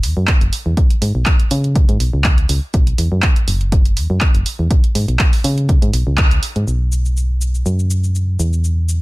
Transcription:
0.03 E2, open hi-hat
0.17 F#2
0.27 kick, clap, closed hi-hat
0.41 F#1, closed hi-hat
0.53 open hi-hat
0.66 E2
0.77 kick, closed hi-hat
0.90 closed hi-hat
1.02 G#2, open hi-hat
1.15 B1
1.26 kick, clap, closed hi-hat
1.40 closed hi-hat
1.51 C#3, open hi-hat
1.64 closed hi-hat
1.75 kick, closed hi-hat
1.89 G#2, closed hi-hat
2.00 B1, open hi-hat
2.13 C#2
2.24 kick, clap, closed hi-hat
2.38 closed hi-hat
2.49 C#2, open hi-hat
2.74 B1, kick, closed hi-hat
2.87 closed hi-hat
2.98 E2, open hi-hat
3.12 F#2
3.22 kick, clap, closed hi-hat
3.36 closed hi-hat
3.48 F#1, open hi-hat
3.61 closed hi-hat
3.72 kick, closed hi-hat
3.85 closed hi-hat
3.97 E2, open hi-hat
4.10 F#2
4.21 kick, clap, closed hi-hat
4.35 F#1, closed hi-hat
4.46 open hi-hat
4.59 E2
4.71 kick, closed hi-hat
4.84 closed hi-hat
4.95 G#2, open hi-hat
5.08 B1, closed hi-hat
5.19 kick, clap, closed hi-hat
5.33 open hi-hat
5.44 C#3, open hi-hat
5.58 closed hi-hat
5.69 kick, closed hi-hat
5.82 G#2, closed hi-hat
5.93 B1, open hi-hat
6.07 C#2
6.18 kick, clap, closed hi-hat
6.31 closed hi-hat
6.43 open hi-hat
6.56 G#2, closed hi-hat
6.67 B1, shaker
6.92 shaker
7.05 shaker
7.17 shaker
7.41 shaker
7.55 shaker
7.66 F#2, shaker
7.79 shaker
7.91 shaker
8.04 shaker
8.15 shaker
8.39 E2, shaker
8.53 shaker
8.64 shaker
8.89 shaker

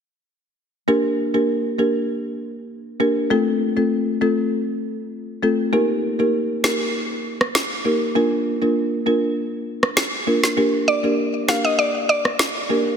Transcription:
0.88 A#3 D4 G4 A#4
1.34 A#3 D4 G4 A#4
1.79 A#3 D4 G4 A#4
3.00 A#3 D4 G4 A#4
3.30 A3 C4 F4 A4
3.77 A3 C4 F4 A4
4.21 A3 C4 F4 A4
5.43 A3 C4 F4 A4
5.73 A#3 D#4 G4 A#4
6.19 A#3 D#4 G4 A#4
6.64 A#3 D#4 G4 A#4, snare
7.41 cross-stick
7.55 snare
7.85 A#3 D#4 G4 A#4
8.15 A#3 D4 F4 A#4
8.62 A#3 D4 F4 A#4
9.06 A#3 D4 F4 A#4
9.83 cross-stick
9.97 snare
10.27 A#3 D4 F4 A#4
10.44 snare
10.57 A#3 D4 G4 A#4
10.88 D5
11.03 A#3 D4 G4 A#4
11.48 A#3 D4 G4 A#4 F5, snare
11.65 D#5
11.79 D5
12.09 D5
12.25 cross-stick
12.39 snare
12.69 A#3 D4 G4 A#4

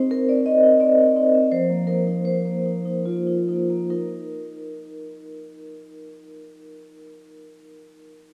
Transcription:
Already playing: C4 D#4 C5
0.11 A#4
0.29 C4 D5
0.46 C4 D#4 D#5
0.63 D#4
0.80 C4 D5
0.98 D#4
1.16 C4 D#4
1.34 C4
1.52 F3 C5
1.70 A#3
1.87 A#3 D#4 A#4
2.07 D#4
2.25 C5
2.45 A#3
2.66 A#3 D#4
2.85 D#4
3.05 A#3 F4
3.27 D#4
3.48 A#3 D#4
3.70 A#3
3.90 D#4 A#4

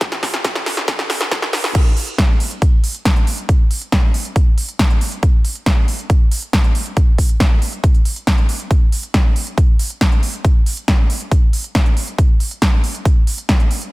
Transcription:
0.01 kick, snare, closed hi-hat
0.12 snare
0.23 kick, snare, open hi-hat
0.34 snare, closed hi-hat
0.45 kick, snare, closed hi-hat
0.55 snare, closed hi-hat
0.66 snare, open hi-hat
0.77 snare, closed hi-hat
0.88 kick, snare, closed hi-hat
0.99 snare, closed hi-hat
1.10 snare, open hi-hat
1.21 snare, closed hi-hat
1.31 kick, snare, closed hi-hat
1.42 snare, closed hi-hat
1.53 snare, open hi-hat
1.64 snare, open hi-hat
1.75 kick, closed hi-hat, crash
1.97 open hi-hat
2.08 closed hi-hat
2.18 kick, snare, closed hi-hat
2.40 open hi-hat
2.51 closed hi-hat
2.62 kick, closed hi-hat
2.84 open hi-hat
2.95 closed hi-hat
3.05 kick, snare, closed hi-hat
3.16 closed hi-hat
3.27 open hi-hat
3.38 closed hi-hat
3.49 kick, closed hi-hat
3.71 open hi-hat
3.82 closed hi-hat
3.92 kick, snare, closed hi-hat
4.14 open hi-hat
4.25 closed hi-hat
4.36 kick, closed hi-hat
4.58 open hi-hat
4.69 closed hi-hat
4.79 kick, snare, closed hi-hat
4.90 closed hi-hat
5.01 open hi-hat
5.12 closed hi-hat
5.23 kick, closed hi-hat
5.45 open hi-hat
5.55 closed hi-hat
5.66 kick, snare, closed hi-hat
5.88 open hi-hat
5.99 closed hi-hat
6.10 kick, closed hi-hat
6.32 open hi-hat
6.42 closed hi-hat
6.53 kick, snare, closed hi-hat
6.64 closed hi-hat
6.75 open hi-hat
6.86 closed hi-hat
6.97 kick, closed hi-hat
7.18 kick, open hi-hat
7.29 closed hi-hat
7.40 kick, snare, closed hi-hat
7.62 open hi-hat
7.73 closed hi-hat
7.84 kick, closed hi-hat
7.95 closed hi-hat
8.05 open hi-hat
8.16 closed hi-hat
8.27 kick, snare, closed hi-hat
8.38 closed hi-hat
8.49 open hi-hat
8.60 closed hi-hat
8.71 kick, closed hi-hat
8.92 open hi-hat
9.03 closed hi-hat
9.14 kick, snare, closed hi-hat
9.36 open hi-hat
9.47 closed hi-hat
9.58 kick, closed hi-hat
9.79 open hi-hat
9.90 closed hi-hat
10.01 kick, snare, closed hi-hat
10.12 closed hi-hat
10.23 open hi-hat
10.34 closed hi-hat
10.45 kick, closed hi-hat
10.66 open hi-hat
10.77 closed hi-hat
10.88 kick, snare, closed hi-hat
11.10 open hi-hat
11.21 closed hi-hat
11.32 kick, closed hi-hat
11.53 open hi-hat
11.64 closed hi-hat
11.75 kick, snare, closed hi-hat
11.86 closed hi-hat
11.97 open hi-hat
12.08 closed hi-hat
12.18 kick, closed hi-hat
12.40 open hi-hat
12.51 closed hi-hat
12.62 kick, snare, closed hi-hat
12.84 open hi-hat
12.95 closed hi-hat
13.05 kick, closed hi-hat
13.27 open hi-hat
13.38 closed hi-hat
13.49 kick, snare, closed hi-hat
13.60 closed hi-hat
13.71 open hi-hat
13.82 closed hi-hat

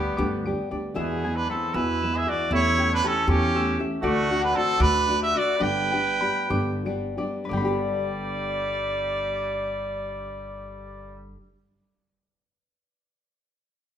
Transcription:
Already playing: G3 B3 D4 G4 D5 G5 B5
0.17 D2 G2 D3 G3 B3 D4 G4 D6
0.45 G3 B3 D4 G4 D7
0.71 D2 G3 B3 D4 G4 D5
0.94 E2 B2 E3 G#3 B3 G#4 E5
1.25 E3 G#3 B3 G#4 G#5
1.36 D4 B4
1.49 E3 G#3 B3 C4 G#4 A4 B5
1.74 E2 B2 E3 G#3 B3 E4 G#4 B4 E6
2.02 E3 G#3 B3 G#4 E7
2.14 G#4 E5
2.27 E3 G#3 B3 F#4 G#4 D5 E5
2.51 E2 E3 A3 C#4 E4 G4 E5
2.55 C#5
2.78 A3 C#4 G4 G5
2.92 D4 B4
3.02 E3 A3 C#4 G4 A5
3.07 A4
3.28 E2 E3 A3 C#4 G4 C#6
3.55 E3 A3 C#4 G4 E6
3.79 A3 C#4 G4 E5
4.02 D2 D3 A3 D4 F#4 D5
4.30 A3 D4 F#4 F#5
4.41 D4 B4
4.54 D3 A3 C4 D4 F#4 A4 A5
4.79 D2 D3 A3 D4 F#4 B4 D6
5.08 D3 A3 D4 F#4 D7
5.19 G4
5.23 E5
5.32 D4 F#4 D5
5.37 A3 D5
5.57 G1 G2 D3 G3 B3 D4 G4 B4 D5
5.63 G5
5.92 G3 B3 D4 G4 G5
6.20 G3 B3 D4 G4 B5
6.50 G1 G2 D3 G3 B3 D4 G4 D6
6.85 G3 B3 D4 G4 D7
7.17 G3 B3 D4 G4 D5
7.44 G2 B4
7.49 G1 D3 G3 D5 G5
7.53 G3 B3
7.57 D4 B5
7.65 G4

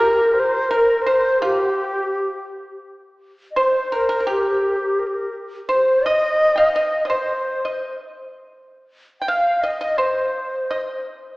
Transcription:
Already playing: A#4
0.01 A#4
0.34 C5
0.40 C5
0.69 A#4
0.75 A#4
1.02 C5
1.06 C5
1.39 F4 G4
1.44 G4
1.61 F#4
1.73 G4
3.51 D#5
3.56 C5
3.61 C5
3.92 A#4
4.09 A#4
4.14 A#4
4.20 A#4
4.27 G4
4.37 A#4
4.43 G4
4.51 A#4
4.62 G4
4.69 A#4
4.77 G4
4.99 A#4
5.07 G4
5.14 A#4
5.69 C5
6.03 D#5
6.56 F5 G5
6.73 D#5
7.04 C5 D#5
7.10 C5
7.65 D#5
9.20 G5
9.28 F5
9.61 D#5
9.81 D#5
9.98 C5
10.71 D#5

